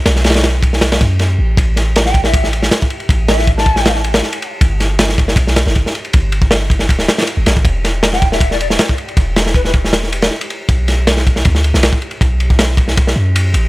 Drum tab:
RD |x---xxx-x---x---x-x-x---x-------|x---x---x---x---x---x---x---x-x-|x---x---x---x---x---x-x---x-x---|x---x---x---x---x---x---x---x-x-|
SD |o-o-ooo-o-----o-o-o-----o-------|----o---o-o---o---o---o-o-------|----o-o---o---o-o-o---o-o-------|----o---o-o---o---o-o-o---o-----|
BD |------------o-------o-----------|o-----------o---o---------o-----|o-------o---o-------------------|o-----------o---o-------o-------|

RD |x---x---x---x---x---x-xxx---x---|x---x---x---x---x---x---x---x-x-|x---x---x---x---x---x-x---x-x---|x---x---x---x---x---x---x---x-x-|
SD |--------o-----o---o-o-oo----o---|----o---o-o---o---o---o-o-------|----o-o---o---o-o-o---o-o-------|----o---o-o---o---o---o-o-------|
BD |o-----o-----o---o-------------o-|o-----------o---o---------o-----|o-------o---o-------------------|o-----------o---o---------o-----|

RD |x---x---x---x---x-------x---x---|
SD |--------o-----o---o-------------|
BD |o-----o-----o---o---------------|